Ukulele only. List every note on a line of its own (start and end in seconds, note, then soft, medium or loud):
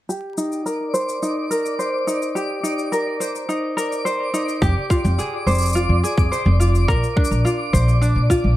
0.09 0.65 G4 medium
0.37 1.21 D#4 medium
0.66 1.49 A#4 medium
0.94 1.79 C5 medium
1.22 2.06 D#4 medium
1.51 2.35 A#4 medium
1.79 3.20 C5 medium
2.07 2.62 D#4 medium
2.35 3.20 G4 medium
2.63 3.47 D#4 medium
2.92 3.76 A#4 medium
3.20 4.05 C5 medium
3.49 4.32 D#4 medium
3.77 4.61 A#4 medium
4.05 5.46 C5 medium
4.34 4.68 D#4 medium
4.62 6.88 G4 medium
4.90 5.75 F4 medium
5.18 5.75 G#4 medium
5.47 6.31 C5 medium
5.75 6.03 F4 medium
6.03 6.59 G#4 medium
6.32 7.19 C5 medium
6.60 7.44 F4 medium
6.88 8.57 A#4 medium
7.16 8.00 D4 medium
7.45 8.29 F4 medium
7.73 8.57 C5 medium
8.02 8.57 D4 medium
8.30 8.57 F4 medium